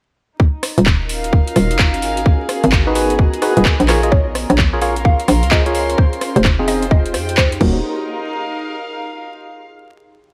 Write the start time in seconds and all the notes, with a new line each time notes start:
0.39 C#4 D#4 F4 F#4 A#4, kick
0.63 cross-stick, open hi-hat
0.78 D#1, closed hi-hat
0.86 kick, clap
1.08 A#4, open hi-hat
1.14 F5
1.24 closed hi-hat
1.33 kick
1.48 closed hi-hat
1.56 D#1, cross-stick, open hi-hat
1.71 F#1, closed hi-hat
1.79 kick, clap
1.94 closed hi-hat
2.02 G#1 B3 D#4 G#4 A#4, open hi-hat
2.17 closed hi-hat
2.26 kick
2.49 cross-stick, open hi-hat
2.64 G#1, closed hi-hat
2.72 D#5 A#5, kick, clap
2.87 D#4 F#4 G#4 B4
2.95 D#4 F#4 G#4 B4, open hi-hat
3.10 closed hi-hat
3.19 kick
3.34 closed hi-hat
3.42 D#4 F#4 G#4 B4, cross-stick, open hi-hat
3.57 D#1 D#4 F#4 G#4 B4, closed hi-hat
3.65 kick, clap
3.80 A#1, closed hi-hat
3.88 C#4 F4 G#4 A#4 C#5 C6, cross-stick, clap, open hi-hat
4.03 F4 G#4 A#4 D#5, closed hi-hat
4.12 C#5, kick
4.35 cross-stick, open hi-hat
4.50 A#1 C#5, closed hi-hat
4.58 kick, clap
4.62 F5
4.73 F4 G#4 A#4 C#5
4.82 F4 G#4 A#4 C#5 F5 C6, open hi-hat
4.96 closed hi-hat
5.05 F5, kick
5.20 closed hi-hat
5.28 A#1, cross-stick, open hi-hat
5.43 C#2, closed hi-hat
5.51 F4 G#4 A#4 C5 D#5, kick, clap
5.66 F4 G#4 A#4 C#5, closed hi-hat
5.75 open hi-hat
5.90 closed hi-hat
5.98 D#4 F4 G4 C5, kick
6.13 closed hi-hat
6.21 cross-stick, open hi-hat
6.28 C5
6.36 F1 C5, closed hi-hat
6.44 kick, clap
6.59 C4 D#4 F4 G#4
6.68 C4 D#4 F4 G#4 D#5, open hi-hat
6.83 G5, closed hi-hat
6.91 D#5, kick
7.06 closed hi-hat
7.14 F2, cross-stick, open hi-hat
7.29 closed hi-hat
7.37 C5, kick, clap
7.52 closed hi-hat
7.61 D#1 A#3 C#4 D#4 F#4 A#4, kick, crash
7.70 A#4
8.01 F5